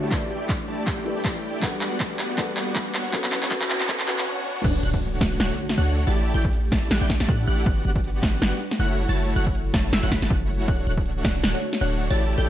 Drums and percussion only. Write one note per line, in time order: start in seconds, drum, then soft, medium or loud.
0.03 closed hi-hat soft
0.07 closed hi-hat medium
0.11 kick medium
0.11 clap medium
0.11 closed hi-hat medium
0.30 closed hi-hat medium
0.49 kick medium
0.49 clap medium
0.49 closed hi-hat medium
0.68 closed hi-hat soft
0.73 closed hi-hat medium
0.79 closed hi-hat soft
0.83 kick loud
0.83 closed hi-hat medium
0.87 clap medium
0.87 closed hi-hat medium
1.06 closed hi-hat medium
1.25 kick loud
1.25 clap medium
1.25 closed hi-hat medium
1.44 closed hi-hat soft
1.49 closed hi-hat medium
1.54 closed hi-hat soft
1.58 closed hi-hat medium
1.62 kick medium
1.62 clap medium
1.62 closed hi-hat medium
1.81 clap medium
1.81 closed hi-hat medium
2.00 kick medium
2.00 clap medium
2.00 closed hi-hat medium
2.19 clap medium
2.19 closed hi-hat soft
2.24 closed hi-hat medium
2.30 closed hi-hat soft
2.34 kick loud
2.34 closed hi-hat medium
2.38 clap medium
2.38 closed hi-hat medium
2.57 clap medium
2.57 closed hi-hat medium
2.76 kick loud
2.76 clap medium
2.76 closed hi-hat medium
2.95 clap medium
2.95 closed hi-hat soft
3.00 closed hi-hat medium
3.05 closed hi-hat soft
3.09 closed hi-hat medium
3.13 kick medium
3.13 clap medium
3.13 closed hi-hat medium
3.24 clap medium
3.32 clap medium
3.32 closed hi-hat medium
3.43 clap medium
3.51 kick medium
3.51 clap loud
3.51 closed hi-hat medium
3.62 clap medium
3.70 clap loud
3.70 closed hi-hat soft
3.75 closed hi-hat medium
3.81 clap medium
3.81 closed hi-hat soft
3.85 closed hi-hat medium
3.89 kick loud
3.89 clap loud
3.89 closed hi-hat medium
4.00 clap medium
4.08 clap loud
4.08 closed hi-hat medium
4.18 clap loud
4.64 kick loud
4.64 closed hi-hat medium
4.64 crash loud
4.83 closed hi-hat medium
4.94 kick medium
5.02 closed hi-hat medium
5.21 kick loud
5.21 snare medium
5.21 closed hi-hat soft
5.26 closed hi-hat medium
5.32 closed hi-hat soft
5.36 closed hi-hat medium
5.40 snare loud
5.40 closed hi-hat medium
5.59 closed hi-hat medium
5.69 snare medium
5.78 closed hi-hat medium
5.97 closed hi-hat medium
6.02 closed hi-hat medium
6.07 closed hi-hat medium
6.11 closed hi-hat medium
6.15 closed hi-hat medium
6.34 closed hi-hat medium
6.45 kick medium
6.53 closed hi-hat medium
6.72 kick loud
6.72 snare medium
6.72 closed hi-hat soft
6.77 closed hi-hat medium
6.83 closed hi-hat soft
6.87 closed hi-hat medium
6.91 snare loud
6.91 closed hi-hat medium
7.10 kick medium
7.10 snare medium
7.10 closed hi-hat medium
7.20 snare medium
7.28 kick loud
7.28 closed hi-hat medium
7.48 closed hi-hat medium
7.53 closed hi-hat medium
7.58 closed hi-hat medium
7.62 kick loud
7.62 closed hi-hat medium
7.66 closed hi-hat medium
7.85 closed hi-hat medium
7.96 kick medium
8.04 closed hi-hat medium
8.23 kick loud
8.23 snare medium
8.23 closed hi-hat soft
8.28 closed hi-hat medium
8.33 closed hi-hat soft
8.38 closed hi-hat medium
8.42 snare loud
8.42 closed hi-hat medium
8.61 closed hi-hat medium
8.71 snare medium
8.80 closed hi-hat medium
8.98 closed hi-hat soft
9.04 closed hi-hat medium
9.09 closed hi-hat soft
9.13 closed hi-hat medium
9.17 closed hi-hat medium
9.36 closed hi-hat medium
9.47 kick medium
9.55 closed hi-hat medium
9.74 kick loud
9.74 snare medium
9.74 closed hi-hat soft
9.79 closed hi-hat medium
9.84 closed hi-hat soft
9.89 closed hi-hat medium
9.93 snare loud
9.93 closed hi-hat medium
10.12 kick medium
10.12 snare medium
10.12 closed hi-hat medium
10.22 snare medium
10.30 kick loud
10.30 closed hi-hat medium
10.49 closed hi-hat soft
10.55 closed hi-hat medium
10.60 closed hi-hat soft
10.64 kick loud
10.64 closed hi-hat medium
10.68 closed hi-hat medium
10.87 closed hi-hat medium
10.97 kick medium
11.06 closed hi-hat medium
11.25 kick loud
11.25 snare medium
11.25 closed hi-hat soft
11.30 closed hi-hat medium
11.35 closed hi-hat soft
11.39 closed hi-hat medium
11.44 snare loud
11.44 closed hi-hat medium
11.62 closed hi-hat medium
11.73 snare medium
11.81 closed hi-hat medium
12.00 closed hi-hat soft
12.05 closed hi-hat medium
12.11 closed hi-hat medium
12.15 closed hi-hat medium
12.19 closed hi-hat medium
12.38 closed hi-hat medium